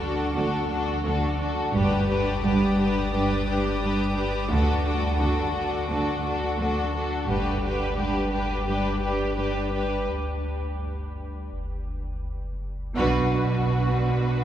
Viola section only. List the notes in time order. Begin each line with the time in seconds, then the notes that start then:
0.00 D4
0.35 D4
0.68 D4
1.04 D4
1.38 D4
1.74 D4
2.09 D4
2.42 D4
2.78 D4
3.12 D4
3.48 D4
3.81 D4
4.17 D4
4.51 D4
4.86 D4
5.20 D4
5.55 D4
5.90 D4
6.25 D4
6.59 D4
6.94 D4
7.29 D4
7.63 D4
7.97 D4
8.33 D4
8.68 D4
9.03 D4
9.38 D4
9.73 D4
12.97 D4